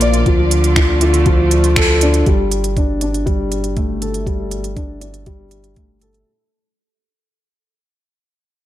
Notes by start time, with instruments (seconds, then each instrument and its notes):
Already playing: analog synth bass A#1, string section A#2 A#3 F4 D5, grand piano F3 A#3 F4
0.01 grand piano D5, closed hi-hat
0.14 closed hi-hat
0.25 analog synth bass D2, string section D3, grand piano F3, kick, closed hi-hat
0.51 closed hi-hat
0.64 closed hi-hat
0.75 string section A3, grand piano F4, finger snap, kick, closed hi-hat
1.01 grand piano F4, closed hi-hat
1.14 closed hi-hat
1.26 grand piano F3, kick, closed hi-hat
1.51 closed hi-hat
1.64 closed hi-hat
1.76 grand piano A4, finger snap, kick, closed hi-hat
2.01 grand piano D4, closed hi-hat
2.14 closed hi-hat
2.26 analog synth bass G1, grand piano G3, kick, closed hi-hat
2.52 closed hi-hat
2.64 closed hi-hat
2.77 grand piano D4, kick, closed hi-hat
3.01 grand piano D4, closed hi-hat
3.14 closed hi-hat
3.26 grand piano G3, kick, closed hi-hat
3.52 closed hi-hat
3.64 closed hi-hat
3.77 grand piano A3, kick, closed hi-hat
4.01 grand piano A4, closed hi-hat
4.14 closed hi-hat
4.26 grand piano G3, kick, closed hi-hat
4.51 closed hi-hat
4.64 closed hi-hat
4.76 grand piano D4, kick, closed hi-hat
5.01 grand piano D4, closed hi-hat
5.14 closed hi-hat
5.26 grand piano G3, kick, closed hi-hat
5.51 closed hi-hat
5.64 closed hi-hat
5.76 grand piano A3, kick, closed hi-hat
6.01 grand piano A4, closed hi-hat
6.14 closed hi-hat